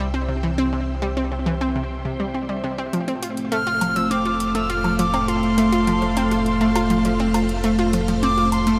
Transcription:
Already playing: C2 C4 C5 E5 G5
0.14 C4
0.29 C3
0.43 E3
0.58 C4
0.73 C3
1.02 G3
1.17 C4
1.32 C3
1.46 E3
1.61 C4
1.76 C3
2.05 C3
2.20 G3
2.34 C4
2.49 G3
2.64 C3
2.78 C4
2.93 F1 F3 A3, closed hi-hat
3.08 C4, closed hi-hat
3.22 F4, closed hi-hat
3.37 C5, closed hi-hat
3.52 A3 F6, closed hi-hat
3.56 F5
3.67 F4, closed hi-hat
3.81 F3, closed hi-hat, low woodblock
3.96 F3 E6, closed hi-hat
4.11 C4 D6, closed hi-hat
4.25 F4, closed hi-hat
4.40 closed hi-hat
4.55 A3 E6, closed hi-hat
4.70 F4 F6, closed hi-hat
4.84 F3, closed hi-hat, low woodblock
4.99 F3 D6, closed hi-hat
5.14 C4, closed hi-hat, low woodblock
5.28 F4 C6, closed hi-hat
5.43 closed hi-hat
5.58 A3, closed hi-hat
5.72 F4, closed hi-hat
5.87 F3, closed hi-hat
6.02 F3, closed hi-hat
6.17 C4, closed hi-hat, low woodblock
6.31 F4, closed hi-hat
6.46 C6, closed hi-hat
6.61 A3, closed hi-hat
6.76 F4, closed hi-hat, low woodblock
6.90 F3, closed hi-hat
7.05 F3, closed hi-hat
7.20 C4, closed hi-hat
7.34 F4, closed hi-hat, low woodblock
7.49 closed hi-hat
7.64 A3, closed hi-hat
7.79 F4, closed hi-hat
7.93 F3, closed hi-hat
8.08 F3, closed hi-hat
8.23 C4 D6, closed hi-hat
8.38 F4, closed hi-hat
8.52 C6, closed hi-hat, low woodblock
8.67 A3, closed hi-hat
8.74 C6

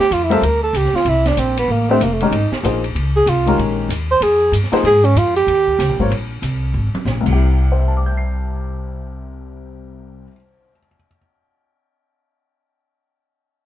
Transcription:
0.00 G4
0.11 F2 F4, hi-hat pedal, ride
0.24 E4
0.30 G3 C4 F4 A4 A#4 E5, ride
0.42 D2 A#4, ride
0.63 A4
0.73 C#2 G4, hi-hat pedal, ride
0.85 snare
0.93 F4, muted upright bass stroke, snare
1.05 C2 E4, ride
1.26 D4, snare, ride
1.37 A#1 C4, hi-hat pedal, ride
1.57 B3, ride
1.68 A1 A#3
1.89 A3 C4 D4 G4 C5 E5
2.00 F1 A#3, hi-hat pedal, ride
2.13 A3
2.21 D#3 G#3 C#4 D#4 G4 A#4, ride
2.31 G#1, ride
2.51 muted upright bass stroke, snare
2.63 A#1 F3 A#3 D#4 G#4 C5, hi-hat pedal, ride
2.84 ride
2.95 C#2, ride
3.16 G#4
3.26 C2 F4, hi-hat pedal, ride
3.46 D#3 G#3 C#4 G4 A#4, ride
3.58 A#1, ride
3.89 D#2, hi-hat pedal, ride
4.11 C5
4.21 F2 G#4, ride
4.52 G2, hi-hat pedal, ride
4.64 snare
4.72 F3 A#3 D#4 G#4 C5, muted upright bass stroke, snare, ride
4.83 G#2 G#4, ride
5.05 C#4, ride
5.15 F2 F4, hi-hat pedal, ride
5.36 G4, ride
5.47 D#2, ride
5.68 kick
5.79 C#2, snare, hi-hat pedal, ride
5.89 A#1
5.99 G#1 G3 C4 F4 A#4 C#5, kick
6.10 A#1, ride
6.42 C2, hi-hat pedal, ride
6.74 G#1
6.94 muted upright bass stroke, mid tom
7.05 A#1, snare, hi-hat pedal
7.21 C2 C3
7.26 C2 G3, kick, crash
7.30 E4 G4
7.72 C5
7.79 E5
7.88 A5
7.97 D6
8.06 G6
8.17 C7

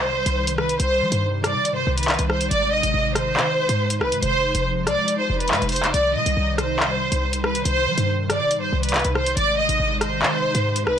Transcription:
Already playing: C2 C3 D#3 G3 D#4 C5
0.26 C2, closed hi-hat
0.47 closed hi-hat
0.58 B4, cross-stick
0.69 closed hi-hat
0.79 C2 C5, closed hi-hat
1.01 G3
1.12 G2, closed hi-hat
1.44 D5, cross-stick, closed hi-hat
1.55 C3
1.65 closed hi-hat
1.71 G2
1.76 C5
1.87 C2
1.97 B4, closed hi-hat
2.03 closed hi-hat
2.08 clap, closed hi-hat
2.14 closed hi-hat
2.19 C2, closed hi-hat
2.30 C5, cross-stick
2.41 closed hi-hat
2.51 G#1 G#3 D5, closed hi-hat
2.73 D#5
2.83 G#1, closed hi-hat
2.94 G#1
3.15 C5, cross-stick, closed hi-hat
3.37 D#3, clap
3.69 G#2, closed hi-hat
3.90 closed hi-hat
4.01 B1 B4, cross-stick
4.12 G#2, closed hi-hat
4.22 F1 F3 G#3 C5, closed hi-hat
4.55 F1, closed hi-hat
4.87 C2 D5, cross-stick, closed hi-hat
5.08 closed hi-hat
5.19 C5
5.30 F1
5.40 B4, closed hi-hat
5.48 G#2, clap, closed hi-hat
5.55 closed hi-hat
5.62 F1, closed hi-hat
5.69 C5, closed hi-hat, open hi-hat
5.76 closed hi-hat
5.83 clap, closed hi-hat
5.94 C2 D#3 G3 D5, closed hi-hat
6.15 C3 D#5
6.26 C2, closed hi-hat
6.37 C2
6.58 C5, cross-stick, closed hi-hat
6.80 clap
7.12 C2, closed hi-hat
7.33 closed hi-hat
7.43 B4, cross-stick
7.55 closed hi-hat
7.65 C2 C5, closed hi-hat
7.87 G3
7.98 G2, closed hi-hat
8.30 D5, cross-stick, closed hi-hat
8.40 C3
8.51 closed hi-hat
8.56 G2
8.61 C5
8.73 C2
8.83 B4, closed hi-hat
8.89 closed hi-hat
8.94 clap, closed hi-hat
8.99 closed hi-hat
9.04 C2, closed hi-hat
9.15 C5, cross-stick
9.26 closed hi-hat
9.37 G#1 C3 G#3 D#4 D5, closed hi-hat
9.58 D#5
9.69 G#1, closed hi-hat
9.80 G#1
10.01 C5, cross-stick, closed hi-hat
10.22 D#3, clap
10.55 G#2, closed hi-hat
10.76 closed hi-hat
10.87 B1 B4, cross-stick

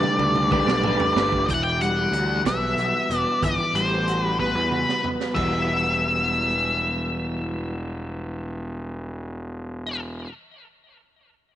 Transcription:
Already playing: G3 A3 D4 G4 B4 D5
0.03 mid tom, low conga
0.19 D2, mid tom
0.36 mid tom
0.52 G3 A3 D4 G4 B4 D5, kick, high conga, low conga
0.67 B1, snare, low conga
0.84 A3 D4 G4 B4, mid tom
1.00 floor tom, low conga
1.16 G1 D4 G4 B4, snare
1.32 kick
1.48 E1 E3 G5, kick, closed hi-hat
1.54 F#5
1.63 G5
1.81 G3 F#5, closed hi-hat
2.12 D2 F#4, closed hi-hat
2.45 B1 B3 E5, kick, snare, closed hi-hat
2.77 B1 F#4, closed hi-hat
3.10 E1 B3, closed hi-hat
3.17 D5
3.42 G1 E3 D5, kick, closed hi-hat
3.74 A1 G3 C5, closed hi-hat
4.08 F#4, closed hi-hat
4.22 B4
4.39 B3 B4, kick
4.55 E2
4.71 F#4, mid tom
4.89 snare
5.03 B3, floor tom
5.20 snare
5.34 E1 E3 G3 B3 F#4 E5, kick, crash

